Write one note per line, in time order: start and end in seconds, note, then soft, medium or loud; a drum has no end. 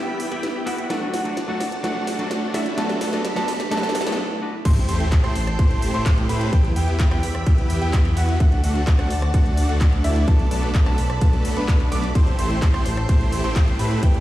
0.00 0.29 E2 loud
0.00 0.28 G3 medium
0.00 0.29 B3 medium
0.00 0.29 E4 medium
0.00 0.29 G4 loud
0.00 0.29 G4 medium
0.00 0.86 G4 medium
0.00 0.88 E5 medium
0.00 0.29 G5 loud
0.00 0.88 B5 medium
0.00 riser medium
0.20 open hi-hat loud
0.31 0.64 E2 loud
0.31 0.42 G3 medium
0.31 0.43 B3 medium
0.31 0.64 B3 medium
0.31 0.64 E4 medium
0.31 0.43 E4 medium
0.31 0.64 G4 loud
0.31 0.43 G4 loud
0.31 0.64 G5 loud
0.31 closed hi-hat medium
0.43 snare medium
0.43 closed hi-hat medium
0.66 0.88 E2 loud
0.66 0.78 G3 medium
0.66 0.78 B3 medium
0.66 0.87 B3 loud
0.66 0.87 E4 medium
0.66 0.78 E4 medium
0.66 0.87 F#4 loud
0.66 0.78 G4 loud
0.66 0.87 F#5 loud
0.66 open hi-hat loud
0.78 closed hi-hat medium
0.90 1.11 D2 loud
0.90 1.22 F#3 loud
0.90 1.09 A3 loud
0.90 1.22 A3 medium
0.90 1.09 D4 medium
0.90 1.23 D4 medium
0.90 1.09 F#4 loud
0.90 2.76 F#4 medium
0.90 1.23 F#4 medium
0.90 4.15 D5 medium
0.90 1.09 F#5 loud
0.90 2.76 A5 medium
0.90 snare medium
0.90 closed hi-hat medium
1.14 1.46 D2 loud
1.14 1.33 A3 medium
1.14 1.33 D4 medium
1.14 1.33 F#4 loud
1.14 1.33 F#5 loud
1.14 snare medium
1.14 open hi-hat loud
1.25 1.36 F#3 medium
1.25 1.36 A3 medium
1.25 1.37 D4 medium
1.25 1.37 F#4 medium
1.25 closed hi-hat medium
1.37 snare medium
1.37 closed hi-hat medium
1.48 1.82 D2 loud
1.48 1.60 F#3 medium
1.48 1.61 A3 loud
1.48 1.60 A3 medium
1.48 1.61 D4 medium
1.48 1.60 D4 medium
1.48 1.61 F#4 loud
1.48 1.60 F#4 loud
1.48 1.61 F#5 loud
1.60 snare medium
1.60 open hi-hat loud
1.72 closed hi-hat medium
1.83 2.17 D2 loud
1.83 2.16 F#3 medium
1.83 2.16 A3 loud
1.83 2.16 A3 medium
1.83 2.16 D4 medium
1.83 2.16 F#4 loud
1.83 2.17 F#4 medium
1.83 2.16 F#5 loud
1.83 snare medium
1.83 closed hi-hat medium
2.07 snare medium
2.07 open hi-hat loud
2.18 2.52 D2 loud
2.18 2.30 F#3 loud
2.18 2.51 A3 medium
2.18 2.30 A3 medium
2.18 2.51 D4 medium
2.18 2.30 D4 medium
2.18 2.51 F#4 medium
2.18 2.31 F#4 medium
2.18 2.51 F#5 loud
2.18 closed hi-hat medium
2.31 snare medium
2.31 closed hi-hat medium
2.54 2.75 D2 loud
2.54 2.65 F#3 loud
2.54 2.65 A3 medium
2.54 2.75 A3 loud
2.54 2.75 D4 medium
2.54 2.66 D4 medium
2.54 2.75 E4 loud
2.54 2.66 F#4 loud
2.54 2.75 E5 loud
2.54 snare medium
2.54 open hi-hat loud
2.66 closed hi-hat medium
2.77 2.99 B1 loud
2.77 2.97 F#3 loud
2.77 3.10 A3 loud
2.77 2.97 A3 medium
2.77 3.10 B3 medium
2.77 2.97 B3 medium
2.77 2.97 D4 medium
2.77 3.10 D4 medium
2.77 3.10 F#4 medium
2.77 2.97 A4 loud
2.77 4.17 A4 medium
2.77 2.97 A5 loud
2.77 4.17 B5 medium
2.77 snare medium
2.77 closed hi-hat medium
2.89 snare medium
3.01 3.20 F#3 medium
3.01 3.20 A3 medium
3.01 3.20 B3 medium
3.01 3.20 D4 medium
3.01 3.20 A4 loud
3.01 3.20 A5 loud
3.01 snare loud
3.01 open hi-hat loud
3.12 3.24 A3 medium
3.12 3.24 B3 medium
3.12 3.24 D4 medium
3.12 3.24 F#4 medium
3.12 snare medium
3.12 closed hi-hat medium
3.25 snare medium
3.25 closed hi-hat medium
3.36 3.69 B1 loud
3.36 3.48 F#3 loud
3.36 3.47 A3 medium
3.36 3.48 A3 medium
3.36 3.48 B3 medium
3.36 3.47 B3 medium
3.36 3.48 D4 medium
3.36 3.48 F#4 loud
3.36 3.48 A4 loud
3.36 3.48 A5 loud
3.36 snare medium
3.36 closed hi-hat soft
3.48 snare medium
3.48 open hi-hat loud
3.60 snare medium
3.60 closed hi-hat soft
3.71 4.04 B1 loud
3.71 4.04 F#3 medium
3.71 4.04 A3 medium
3.71 4.04 B3 medium
3.71 4.04 D4 medium
3.71 4.04 F#4 loud
3.71 4.04 A4 loud
3.71 4.04 A5 loud
3.71 snare loud
3.71 closed hi-hat medium
3.77 snare medium
3.83 snare medium
3.89 snare medium
3.95 snare loud
3.95 open hi-hat loud
4.01 snare loud
4.06 4.18 B1 loud
4.06 4.18 F#3 medium
4.06 4.39 A3 medium
4.06 4.18 A3 medium
4.06 4.39 B3 medium
4.06 4.18 B3 medium
4.06 4.18 D4 medium
4.06 4.39 D4 medium
4.06 4.18 A4 loud
4.06 4.39 A4 medium
4.06 4.18 A5 loud
4.06 snare medium
4.06 open hi-hat medium
4.12 snare medium
4.41 4.53 A3 medium
4.41 4.53 B3 medium
4.41 4.53 D4 medium
4.41 4.53 F#4 loud
4.65 4.86 A1 loud
4.65 4.84 A3 loud
4.65 4.84 C4 medium
4.65 4.84 E4 medium
4.65 4.84 G4 medium
4.65 6.51 A4 medium
4.65 4.84 C5 loud
4.65 6.51 G5 medium
4.65 4.84 C6 loud
4.65 6.51 C6 medium
4.65 kick loud
4.65 closed hi-hat loud
4.65 crash loud
4.65 sub drop medium
4.77 closed hi-hat soft
4.89 5.22 A1 loud
4.89 5.08 A3 medium
4.89 5.08 C4 medium
4.89 5.08 E4 medium
4.89 5.08 G4 medium
4.89 5.08 C5 loud
4.89 5.08 C6 loud
4.89 open hi-hat loud
5.00 closed hi-hat soft
5.12 kick loud
5.12 clap loud
5.12 closed hi-hat loud
5.24 5.57 A1 loud
5.24 5.36 A3 loud
5.24 5.36 C4 medium
5.24 5.36 E4 medium
5.24 5.36 G4 medium
5.24 5.36 C5 loud
5.24 5.36 C6 loud
5.24 cross-stick medium
5.24 closed hi-hat soft
5.36 open hi-hat loud
5.47 cross-stick medium
5.47 closed hi-hat soft
5.59 5.91 A3 loud
5.59 5.91 C4 medium
5.59 5.91 E4 medium
5.59 5.91 G4 medium
5.59 5.91 C5 loud
5.59 5.91 C6 loud
5.59 kick loud
5.59 closed hi-hat loud
5.71 closed hi-hat soft
5.82 open hi-hat loud
5.94 6.27 A2 loud
5.94 6.26 A3 medium
5.94 6.26 C4 medium
5.94 6.26 E4 medium
5.94 6.26 G4 medium
5.94 6.26 C5 loud
5.94 6.26 C6 loud
5.94 closed hi-hat soft
6.06 kick loud
6.06 clap loud
6.06 closed hi-hat loud
6.18 closed hi-hat soft
6.29 6.50 A2 loud
6.29 6.50 A3 loud
6.29 6.50 C4 medium
6.29 6.50 E4 medium
6.29 6.50 G4 medium
6.29 6.50 B4 loud
6.29 6.50 B5 loud
6.29 open hi-hat loud
6.41 closed hi-hat soft
6.53 6.74 E2 loud
6.53 6.72 B3 loud
6.53 8.38 G4 medium
6.53 8.38 E5 medium
6.53 6.72 G5 loud
6.53 8.38 B5 medium
6.53 kick loud
6.53 closed hi-hat medium
6.65 closed hi-hat soft
6.76 7.09 E2 loud
6.76 6.95 B3 medium
6.76 6.95 E4 medium
6.76 6.95 G4 loud
6.76 6.95 G5 loud
6.76 open hi-hat loud
6.88 closed hi-hat soft
7.00 kick loud
7.00 clap loud
7.00 closed hi-hat loud
7.11 7.44 E2 loud
7.11 7.23 B3 loud
7.11 7.23 E4 medium
7.11 7.23 G4 loud
7.11 7.23 G5 loud
7.11 cross-stick medium
7.11 closed hi-hat soft
7.23 open hi-hat loud
7.35 cross-stick medium
7.35 closed hi-hat soft
7.46 7.79 E2 loud
7.46 7.79 B3 loud
7.46 7.79 E4 medium
7.46 7.79 G4 loud
7.46 7.79 G5 loud
7.46 kick loud
7.46 closed hi-hat loud
7.58 closed hi-hat soft
7.70 open hi-hat loud
7.82 8.14 E2 loud
7.82 8.14 B3 medium
7.82 8.14 E4 medium
7.82 8.14 G4 loud
7.82 8.14 G5 loud
7.82 closed hi-hat soft
7.93 kick loud
7.93 clap loud
7.93 closed hi-hat medium
8.05 closed hi-hat soft
8.17 8.38 E2 loud
8.17 8.37 B3 loud
8.17 8.37 E4 medium
8.17 8.37 F#4 loud
8.17 8.37 F#5 loud
8.17 open hi-hat loud
8.29 closed hi-hat soft
8.40 8.61 D2 loud
8.40 8.59 A3 loud
8.40 8.59 D4 medium
8.40 8.59 F#4 loud
8.40 10.26 F#4 medium
8.40 12.12 D5 medium
8.40 8.59 F#5 loud
8.40 10.26 A5 medium
8.40 kick loud
8.40 closed hi-hat medium
8.52 closed hi-hat soft
8.64 8.97 D2 loud
8.64 8.83 A3 medium
8.64 8.83 D4 medium
8.64 8.83 F#4 loud
8.64 8.83 F#5 loud
8.64 open hi-hat loud
8.75 closed hi-hat soft
8.87 kick loud
8.87 clap loud
8.87 closed hi-hat medium
8.99 9.32 D2 loud
8.99 9.11 A3 loud
8.99 9.11 D4 medium
8.99 9.11 F#4 loud
8.99 9.11 F#5 loud
8.99 cross-stick medium
8.99 closed hi-hat soft
9.11 open hi-hat loud
9.22 cross-stick medium
9.22 closed hi-hat soft
9.34 9.66 A3 loud
9.34 9.66 D4 medium
9.34 9.66 F#4 loud
9.34 9.66 F#5 loud
9.34 kick loud
9.34 closed hi-hat medium
9.46 closed hi-hat soft
9.57 open hi-hat loud
9.69 10.02 D2 loud
9.69 10.01 A3 medium
9.69 10.01 D4 medium
9.69 10.01 F#4 loud
9.69 10.01 F#5 loud
9.69 closed hi-hat soft
9.81 kick loud
9.81 clap loud
9.81 closed hi-hat medium
9.93 closed hi-hat soft
10.04 10.25 D2 loud
10.04 10.25 A3 loud
10.04 10.25 D4 medium
10.04 10.25 E4 loud
10.04 10.25 E5 loud
10.04 open hi-hat loud
10.16 closed hi-hat soft
10.28 10.47 F#3 loud
10.28 10.47 A3 medium
10.28 10.47 B3 medium
10.28 10.47 D4 medium
10.28 12.13 A4 medium
10.28 10.47 A4 loud
10.28 10.47 A5 loud
10.28 12.13 B5 medium
10.28 kick loud
10.28 closed hi-hat medium
10.39 closed hi-hat soft
10.51 10.84 B1 loud
10.51 10.70 F#3 medium
10.51 10.70 A3 medium
10.51 10.70 B3 medium
10.51 10.70 D4 medium
10.51 10.70 A4 loud
10.51 10.70 A5 loud
10.51 open hi-hat loud
10.63 closed hi-hat soft
10.75 kick loud
10.75 clap loud
10.75 closed hi-hat medium
10.86 11.19 B1 loud
10.86 10.98 F#3 loud
10.86 10.98 A3 medium
10.86 10.98 B3 medium
10.86 10.98 D4 medium
10.86 10.98 A4 loud
10.86 10.98 A5 loud
10.86 cross-stick medium
10.86 closed hi-hat soft
10.98 open hi-hat loud
11.10 cross-stick medium
11.10 closed hi-hat soft
11.21 11.54 F#3 loud
11.21 11.54 A3 medium
11.21 11.54 B3 medium
11.21 11.54 D4 medium
11.21 11.54 A4 loud
11.21 11.54 A5 loud
11.21 kick loud
11.21 closed hi-hat medium
11.33 closed hi-hat soft
11.45 open hi-hat loud
11.57 11.89 B1 loud
11.57 11.89 F#3 medium
11.57 11.89 A3 medium
11.57 11.89 B3 medium
11.57 11.89 D4 medium
11.57 11.89 B4 medium
11.57 11.89 B5 medium
11.57 closed hi-hat soft
11.68 kick loud
11.68 clap loud
11.68 closed hi-hat medium
11.80 closed hi-hat soft
11.92 12.13 B1 loud
11.92 12.04 F#3 loud
11.92 12.04 A3 medium
11.92 12.04 B3 medium
11.92 12.04 D4 medium
11.92 12.04 D5 loud
11.92 12.04 D6 loud
11.92 open hi-hat loud
12.04 closed hi-hat soft
12.15 12.36 A1 loud
12.15 12.34 A3 loud
12.15 12.34 C4 medium
12.15 12.34 E4 medium
12.15 12.34 G4 medium
12.15 14.01 A4 medium
12.15 12.34 C5 loud
12.15 14.01 G5 medium
12.15 12.34 C6 loud
12.15 14.01 C6 medium
12.15 kick loud
12.15 closed hi-hat medium
12.15 ride medium
12.27 closed hi-hat soft
12.39 12.72 A1 loud
12.39 12.58 A3 medium
12.39 12.58 C4 medium
12.39 12.58 E4 medium
12.39 12.58 G4 medium
12.39 12.58 C5 loud
12.39 12.58 C6 loud
12.39 open hi-hat loud
12.50 closed hi-hat soft
12.62 kick loud
12.62 clap loud
12.62 closed hi-hat medium
12.62 ride medium
12.74 13.07 A1 loud
12.74 12.86 A3 loud
12.74 12.86 C4 medium
12.74 12.86 E4 medium
12.74 12.86 G4 medium
12.74 12.86 C5 loud
12.74 12.86 C6 loud
12.74 cross-stick medium
12.74 closed hi-hat soft
12.86 open hi-hat loud
12.97 cross-stick medium
12.97 closed hi-hat soft
13.09 13.41 A3 loud
13.09 13.41 C4 medium
13.09 13.41 E4 medium
13.09 13.41 G4 medium
13.09 13.41 C5 loud
13.09 13.41 C6 loud
13.09 kick loud
13.09 closed hi-hat medium
13.09 ride medium
13.21 closed hi-hat soft
13.32 open hi-hat loud
13.44 13.77 A1 loud
13.44 13.76 A3 medium
13.44 13.76 C4 medium
13.44 13.76 E4 medium
13.44 13.76 G4 medium
13.44 13.76 C5 loud
13.44 13.76 C6 medium
13.44 closed hi-hat soft
13.56 kick loud
13.56 clap loud
13.56 closed hi-hat medium
13.56 ride medium
13.68 closed hi-hat soft
13.79 14.00 A2 loud
13.79 14.00 A3 loud
13.79 14.00 C4 medium
13.79 14.00 E4 medium
13.79 14.00 G4 medium
13.79 14.00 B4 loud
13.79 14.00 B5 loud
13.79 open hi-hat loud
13.91 closed hi-hat soft
14.03 14.20 E2 loud
14.03 14.20 B3 loud
14.03 14.20 E4 medium
14.03 14.20 G4 loud
14.03 14.20 G4 medium
14.03 14.20 E5 medium
14.03 14.20 G5 loud
14.03 14.20 B5 medium
14.03 kick loud
14.03 closed hi-hat medium
14.03 ride medium
14.14 closed hi-hat soft